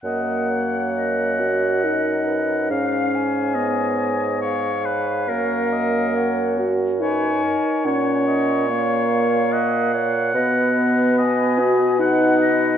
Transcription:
<<
  \new Staff \with { instrumentName = "Flute" } { \time 3/4 \key fis \major \tempo 4 = 71 fis''4 dis''2 | eis''8 gis''4. eis''4~ | eis''4 fis''8 r8 gis''4 | fis''4 eis''2 |
dis''4 gis''4 fis''8 dis''8 | }
  \new Staff \with { instrumentName = "Oboe" } { \time 3/4 \key fis \major fis''2. | eis''4 dis''4 cis''8 b'8 | ais'4. r8 cis''4 | cis''2 fis''4~ |
fis''4 dis''8 dis''8 fis''4 | }
  \new Staff \with { instrumentName = "Clarinet" } { \time 3/4 \key fis \major dis''8 cis''4. ais'8 b'8 | cis''2. | cis''8 dis''8 cis''8 r8 b'8 ais'8 | cis''8 dis''8 cis''8 cis''8 dis''8 cis''8 |
b'2. | }
  \new Staff \with { instrumentName = "French horn" } { \time 3/4 \key fis \major ais4. fis'8 dis'4 | cis'4 b4. r8 | ais4. fis'8 dis'4 | cis'4 ais4. r8 |
b4. fis'8 dis'4 | }
  \new Staff \with { instrumentName = "Bassoon" } { \clef bass \time 3/4 \key fis \major fis,2. | gis,2. | fis,2~ fis,8 r8 | ais,2. |
b,2. | }
>>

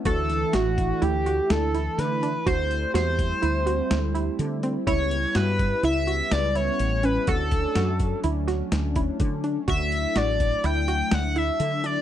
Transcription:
<<
  \new Staff \with { instrumentName = "Analog synth lead" } { \time 5/4 \key d \major \tempo 4 = 125 a'4 fis'4 g'4 a'4 b'4 | c''4 c''2. r4 | cis''4 b'4 e''4 d''8 cis''4 b'8 | a'2 r2. |
e''4 d''4 g''4 fis''8 e''4 d''8 | }
  \new Staff \with { instrumentName = "Synth arpeggio sound" } { \time 5/4 \key d \major fis'4 fis'4 e'8 fis'4 e'4 d'8 | fis'4 fis'4 e'8 fis'4 e'4 c'8 | e'4 fis'4 e'8 fis'4 e'4 cis'8 | fis'4 fis'4 e'8 fis'4 e'4 d'8 |
fis'4 fis'4 e'8 fis'4 e'4 d'8 | }
  \new Staff \with { instrumentName = "Analog synth pad" } { \time 5/4 \key d \major <e a d' e'>1~ <e a d' e'>4 | <g a c' e'>1~ <g a c' e'>4 | <g b cis' e'>1~ <g b cis' e'>4 | <fis a cis' d'>1~ <fis a cis' d'>4 |
<fis a d' e'>1~ <fis a d' e'>4 | }
  \new Staff \with { instrumentName = "Fretless electric bass" } { \clef bass \time 5/4 \key d \major d,4 a,,4 d,4 d,4 d4 | d,4 e,4 d,4 d,4 d4 | cis,4 g,4 cis,4 cis,4 a,,4 | d,4 fis,4 d,4 d,4 d4 |
d,4 a,,4 d,4 d,4 d4 | }
  \new DrumStaff \with { instrumentName = "Drums" } \drummode { \time 5/4 <hh bd>8 <hh sn>8 <hh sn>8 <hh bd>8 hh8 hh8 <hh sn>8 <hh sn>8 <hh sn>8 hh8 | <hh bd>8 hh8 <hh sn>8 <hh bd>8 hh8 hh8 <hh sn>8 hh8 hh8 hh8 | <hh bd>8 hh8 <hh sn>8 <hh bd>8 hh8 hh8 <hh sn>8 <hh sn>8 hh8 hh8 | <hh bd>8 <hh bd>8 <hh sn>8 <hh bd>8 hh8 <hh sn>8 <hh sn>8 <hh bd>8 <hh bd>8 hh8 |
<hh bd>8 hh8 <hh sn>8 <hh bd>8 hh8 hh8 <hh sn>8 hh8 hh8 hh8 | }
>>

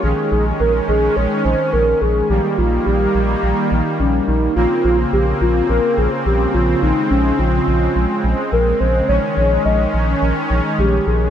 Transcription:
<<
  \new Staff \with { instrumentName = "Soft synth lead" } { \time 4/4 \key des \lydian \tempo 4 = 106 aes'8 aes'8 bes'8 aes'8 des''16. des''32 c''8 bes'8 aes'8 | g'8 f'8 g'4. r8 des'8 ees'8 | f'8 f'8 g'8 f'8 bes'8 aes'8 g'8 f'8 | ees'8 des'8 f'4. r8 bes'8 c''8 |
des''8 des''8 ees''8 r4. g'8 aes'8 | }
  \new Staff \with { instrumentName = "Supersaw synth" } { \clef bass \time 4/4 \key des \lydian << { <ees des'>1 | <ees bes>1 | <des c'>1~ | <des c'>1 |
<ees des'>1 | } \\ { aes1 | g1 | bes1 | aes1~ |
aes1 | } >> }
  \new Staff \with { instrumentName = "Analog synth bass" } { \clef bass \time 4/4 \key des \lydian bes,,8 bes,,8 bes,,8 bes,,8 bes,,8 bes,,8 bes,,8 bes,,8 | bes,,8 bes,,8 bes,,8 bes,,8 bes,,8 bes,,8 bes,,8 bes,,8 | bes,,8 bes,,8 bes,,8 bes,,8 bes,,8 bes,,8 bes,,8 bes,,8 | bes,,8 bes,,8 bes,,8 bes,,8 bes,,8 bes,,8 bes,,8 bes,,8 |
bes,,8 bes,,8 bes,,8 bes,,8 bes,,8 bes,,8 bes,,8 bes,,8 | }
>>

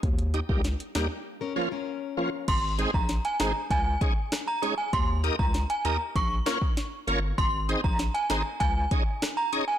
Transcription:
<<
  \new Staff \with { instrumentName = "Synth bell" } { \time 4/4 \key aes \major \tempo 4 = 98 r1 | c'''16 r8 bes''16 r16 aes''16 bes''16 r16 aes''8. r8 bes''16 r16 aes''16 | c'''16 r8 bes''16 r16 aes''16 bes''16 r16 des'''16 r16 des'''16 r4 r16 | c'''16 r8 bes''16 r16 aes''16 bes''16 r16 aes''8. r8 bes''16 r16 aes''16 | }
  \new Staff \with { instrumentName = "Steel-string acoustic guitar" } { \time 4/4 \key aes \major r2 r16 <des' bes'>16 <f' des''>16 <des' bes'>4~ <des' bes'>16 | r1 | r1 | r1 | }
  \new Staff \with { instrumentName = "Tonewheel organ" } { \time 4/4 \key aes \major r8 <ees' g'>16 <g bes ees' g'>16 r8 <g bes ees' g'>16 r8. <f bes des' f'>16 r8. <f bes des' f'>16 r16 | r8 <aes c' ees' aes' c''>16 r8. <aes c' ees' aes' c''>16 r8. <aes des' ees' aes' des''>16 r8. <aes des' ees' aes' des''>16 r16 | r8 <bes ees' g' bes' ees''>16 r8. <bes ees' g' bes' ees''>16 r8. <bes des' f' bes' des''>16 r8. <bes des' f' bes' des''>16 r16 | r8 <c' ees' aes' c'' ees''>16 r8. <c' ees' aes' c'' ees''>16 r8. <des' ees' aes' des'' ees''>16 r8. <des' ees' aes' des'' ees''>16 r16 | }
  \new Staff \with { instrumentName = "Sub bass" } { \clef bass \time 4/4 \key aes \major ees,8. des,8 r16 ees,16 r2 r16 | aes,,8. bes,,8 r16 aes,,16 r16 des,8 r4. | ees,8. des,8 r16 ees,16 r16 bes,,8 r4 g,,8 | aes,,8. bes,,8 r16 aes,,16 r16 des,8 r4. | }
  \new DrumStaff \with { instrumentName = "Drums" } \drummode { \time 4/4 <hh bd>16 hh16 hh16 bd16 <hh sn>16 hh16 <hh ss sn>8 r4 r4 | <cymc hh bd>8 hh16 bd16 <hh sn>16 hh16 <hh ss sn>8 <hh bd>8 <hh bd>8 <hh ss sn>8 hh8 | <hh bd>8 hh16 bd16 <hh sn>16 hh16 hh8 <hh bd>8 <hh ss sn>16 bd16 <hh sn>8 hh8 | <hh bd>8 hh16 bd16 <hh sn>16 hh16 <hh ss sn>8 <hh bd>8 <hh bd>8 <hh ss sn>8 hh8 | }
>>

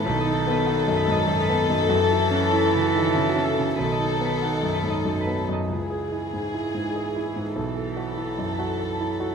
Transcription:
<<
  \new Staff \with { instrumentName = "Harp" } { \time 3/4 \key b \mixolydian \tempo 4 = 97 b'16 dis''16 a''16 b'16 fis''16 a''16 b'16 dis''16 a''16 b'16 a''16 dis''16 | fis'16 a'16 e''16 fis'16 cis''16 e''16 fis'16 a'16 e''16 fis'16 e''16 a'16 | b'16 dis''16 a''16 b'16 fis''16 a''16 b'16 dis''16 a''16 b'16 a''16 dis''16 | r2. |
r2. | }
  \new Staff \with { instrumentName = "Violin section" } { \time 3/4 \key b \mixolydian a'2.~ | a'2. | a'2~ a'8 r8 | gis'2. |
a'2. | }
  \new Staff \with { instrumentName = "Harmonium" } { \time 3/4 \key b \mixolydian << { <fis a'>2.~ | <fis a'>2.~ | <fis a'>2. | <gis gis'>2. |
<fis a'>2. | } \\ { dis'2. | e'2. | dis'2. | e'2.~ |
e'2. | } >> }
  \new Staff \with { instrumentName = "Grand piano" } { \time 3/4 \key b \mixolydian \tuplet 3/2 { b,,8 dis'8 b8 dis'8 fis,8 gis,8 fis,8 b8 fis,8 } | \tuplet 3/2 { fis,8 e'8 cis'8 e'8 cis8 dis8 cis8 cis'8 cis8 } | \tuplet 3/2 { b,,8 dis'8 b8 dis'8 fis,8 gis,8 fis,8 b8 fis,8 } | \tuplet 3/2 { cis,8 gis'8 e'8 gis,8 e'8 gis,8 gis'8 e'8 gis,8 } |
\tuplet 3/2 { b,,8 a'8 fis'8 e'8 fis,8 fis'8 a'8 e'8 fis'8 } | }
  \new Staff \with { instrumentName = "Cello" } { \clef bass \time 3/4 \key b \mixolydian dis2. | e2. | dis2~ dis8 r8 | e2.~ |
e2. | }
>>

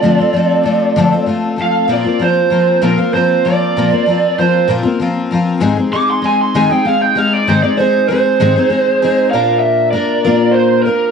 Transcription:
<<
  \new Staff \with { instrumentName = "Lead electric guitar" } { \time 6/8 \key bes \lydian \tempo 4. = 65 d''2 r8 f''8 | d''8 c''4 bes'8 c''8 d''8~ | d''4 c''8 r4. | r8 d'''16 c'''16 aes''16 c'''16 aes''16 g''16 f''16 g''16 f''16 d''16 |
c''16 d''16 c''8 c''2 | f''8 e''8 d''4 c''8 bes'8 | }
  \new Staff \with { instrumentName = "Twelve-string acoustic guitar" } { \time 6/8 \key bes \lydian <d f a c' f'>16 <a c' f'>16 <f a c' f'>8 <f a c' f'>8 <d f a c' f'>16 <a c' f'>16 <f a c' f'>8 <f a c' f'>8 | <bes, f bes c' f'>16 <bes c' f'>16 <f bes c' f'>8 <f bes c' f'>8 <bes, f bes c' f'>16 <bes c' f'>16 <f bes c' f'>8 <f bes c' f'>8 | <bes, f bes c' f'>16 <bes c' f'>16 <f bes c' f'>8 <f bes c' f'>8 <bes, f bes c' f'>16 <bes c' f'>16 <f bes c' f'>8 <f bes c' f'>8 | <aes, ees aes c' ees' aes'>16 <aes c' ees' aes'>16 <aes c' ees' aes'>8 <aes c' ees' aes'>8 <aes, ees aes c' ees' aes'>16 <aes c' ees' aes'>16 <aes c' ees' aes'>8 <aes c' ees' aes'>8 |
<aes, ees aes c' ees' aes'>16 <aes c' ees' aes'>16 <aes c' ees' aes'>8 <aes c' ees' aes'>8 <aes, ees aes c' ees' aes'>16 <aes c' ees' aes'>16 <aes c' ees' aes'>8 <aes c' ees' aes'>8 | <bes, bes d' f' bes'>4 <bes d' f' bes'>8 <bes, bes d' f' bes'>4 <d' f' bes'>8 | }
>>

